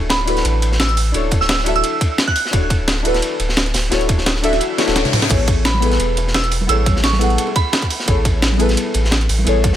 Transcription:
Already playing: D1 D4 E4 F#4 A4 C#5
0.10 B5, snare, closed hi-hat, ride
0.25 D4 E4 F#4 A4, closed hi-hat, ride
0.30 B4
0.37 snare, closed hi-hat
0.45 A1, closed hi-hat, ride
0.62 closed hi-hat, ride
0.72 snare
0.80 E6, snare, closed hi-hat, ride
0.89 closed hi-hat
0.97 open hi-hat, ride
1.12 D1 D4 E4 F#4 A4, closed hi-hat, ride
1.17 C#5
1.31 kick, closed hi-hat, ride
1.41 E6, snare
1.49 snare, closed hi-hat, ride
1.59 snare
1.64 D4 E4 F#4 A4, closed hi-hat, ride
1.69 E5
1.76 E6, closed hi-hat
1.84 closed hi-hat, ride
2.01 kick, closed hi-hat, ride
2.18 snare, closed hi-hat, ride
2.27 F#6, kick, closed hi-hat
2.36 open hi-hat, ride
2.45 snare
2.51 D1 D4 E4 F#4 A4, kick, closed hi-hat, ride
2.55 C#5
2.70 kick, closed hi-hat, ride
2.88 snare, closed hi-hat, ride
3.03 D4 E4 F#4 A4, closed hi-hat, ride
3.07 B4
3.14 snare, closed hi-hat
3.22 closed hi-hat, ride
3.40 D1, closed hi-hat, ride
3.49 snare
3.57 snare, closed hi-hat, ride
3.66 closed hi-hat
3.74 D1, snare, open hi-hat, ride
3.89 D1 D4 E4 F#4 A4, snare, closed hi-hat, ride
3.94 C#5
4.01 closed hi-hat
4.09 kick, closed hi-hat, ride
4.18 snare
4.26 snare, closed hi-hat, ride
4.35 snare
4.43 D4 E4 F#4 A4 E5, closed hi-hat, ride
4.53 snare, closed hi-hat
4.60 closed hi-hat, ride, reverse cymbal
4.77 D4 E4 F#4 A4 C#5, snare, closed hi-hat, ride
4.85 D1 D4 E4 F#4 A4, snare, ride
4.90 C#5
4.95 snare, closed hi-hat, ride
5.05 snare, closed hi-hat, mid tom
5.13 snare, mid tom, open hi-hat, ride
5.22 snare, ride
5.28 A1 B3 E4 G#4 A4, kick, closed hi-hat, ride, crash
5.33 C#5
5.48 kick, closed hi-hat, ride
5.65 B5, snare, closed hi-hat, ride
5.74 high conga
5.80 B3 E4 G#4 A4, closed hi-hat, ride
5.85 B4
5.91 snare, closed hi-hat
6.00 E1, closed hi-hat, ride
6.17 closed hi-hat, ride, high bongo
6.27 snare
6.34 E6, snare, closed hi-hat, ride
6.44 closed hi-hat
6.51 open hi-hat, ride
6.61 high bongo, high conga
6.67 A1 B3 E4 G#4 A4 E6, closed hi-hat, ride
6.71 C#5
6.86 kick, closed hi-hat, ride, high conga
6.96 snare
7.04 C#6, snare, closed hi-hat, ride
7.13 snare, high conga
7.19 B3 E4 G#4 A4, closed hi-hat, ride
7.23 F#5
7.30 closed hi-hat
7.38 closed hi-hat, ride
7.47 high bongo
7.56 B5, kick, closed hi-hat, ride
7.73 snare, closed hi-hat, ride, high bongo
7.82 kick, closed hi-hat
7.90 open hi-hat, ride
8.00 snare
8.06 A1 B3 E4 G#4 A4, kick, closed hi-hat, ride
8.10 C#5
8.25 kick, closed hi-hat, ride
8.42 snare, closed hi-hat, ride
8.52 high conga
8.58 B3 E4 G#4 A4, closed hi-hat, ride
8.62 B4
8.69 snare, closed hi-hat
8.77 closed hi-hat, ride
8.94 A1, closed hi-hat, ride, high bongo
9.04 snare
9.11 snare, closed hi-hat, ride
9.21 closed hi-hat
9.29 A1, open hi-hat, ride
9.38 high bongo, high conga
9.44 A1 B3 E4 G#4 A4, closed hi-hat, ride
9.49 C#5
9.64 kick, closed hi-hat, ride, high conga
9.73 snare

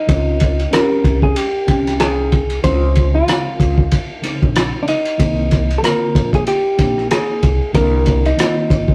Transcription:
Already playing: D#4
0.07 C#2 C#3 G#3 C4 D#4, kick, ride
0.16 F4
0.40 kick, ride
0.59 ride
0.71 G#3 C4 C#4 F4 A#4, cross-stick, hi-hat pedal, ride
0.80 G4
1.04 C2, kick, ride
1.22 G#4, kick
1.36 G4, ride
1.67 C2 G#3 C4 C#4 G5, kick, ride
1.87 cross-stick, ride
2.00 G#4, cross-stick, hi-hat pedal, ride
2.32 kick, ride
2.50 ride
2.63 C#2 C#3 G#3 C4 E4 C5, kick, ride
2.72 F4
2.95 kick, ride
3.15 F4
3.27 C#3 G#3 C4 E4, cross-stick, hi-hat pedal, ride
3.36 F4
3.60 C#2, kick, ride
3.78 kick
3.91 kick, ride
4.22 C#3 G#3 C4 D#4, ride
4.43 A#1, kick
4.56 cross-stick, hi-hat pedal, ride
4.83 D4
4.88 D#4, ride
5.05 ride
5.18 C2 D#3 A#3 C4 D#4, kick, ride
5.51 kick, cross-stick, ride
5.71 ride
5.78 D3 A4
5.83 A#3 C4 F4 A#4, cross-stick, hi-hat pedal, ride
6.15 A#1, kick, ride
6.33 G#4, kick, ride
6.47 G4, ride
6.78 A#1 A#3 C4 D4, kick, cross-stick, ride
6.87 D#4
6.98 cross-stick
7.11 G#4, cross-stick, hi-hat pedal, ride
7.43 C2, kick, ride
7.73 C2 D3 A#3 C4 D4 A#4, kick, ride
8.06 kick, ride
8.25 D#4, ride
8.37 D#3 A#3 C4 E4, cross-stick, hi-hat pedal, ride
8.46 F4
8.70 G#1, kick, ride
8.88 kick

